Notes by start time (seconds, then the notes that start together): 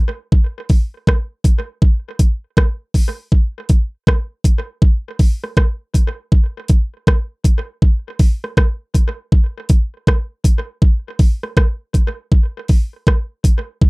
0.32 kick
0.69 kick, open hi-hat
1.07 kick, cross-stick
1.44 kick, closed hi-hat
1.82 kick
2.19 kick, closed hi-hat
2.57 kick, cross-stick
2.94 kick, open hi-hat
3.32 kick
3.69 kick, closed hi-hat
4.07 kick, cross-stick
4.44 kick, closed hi-hat
4.82 kick
5.19 kick, open hi-hat
5.44 cross-stick
5.57 kick, cross-stick
5.94 kick, closed hi-hat
6.32 kick
6.68 kick, closed hi-hat
7.07 kick, cross-stick
7.44 kick, closed hi-hat
7.82 kick
8.19 kick, open hi-hat
8.44 cross-stick
8.57 kick, cross-stick
8.95 kick, closed hi-hat
9.32 kick
9.69 kick, closed hi-hat
10.07 kick, cross-stick
10.44 kick, closed hi-hat
10.82 kick
11.19 kick, open hi-hat
11.43 cross-stick
11.57 kick, cross-stick
11.94 kick, closed hi-hat
12.32 kick
12.68 kick, open hi-hat
13.07 kick, cross-stick
13.44 kick, closed hi-hat
13.82 kick